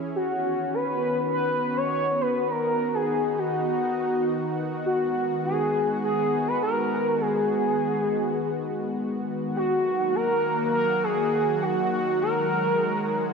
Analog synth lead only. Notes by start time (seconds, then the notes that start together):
0.15 F#4
0.74 B4
1.33 B4
1.77 C#5
2.21 B4
2.50 A#4
2.94 G#4
3.39 F#4
3.68 F#4
4.86 F#4
5.45 G#4
6.04 G#4
6.48 B4
6.62 A#4
7.21 G#4
9.56 F#4
10.15 A#4
10.74 A#4
11.04 G#4
11.63 F#4
11.92 F#4
12.21 A#4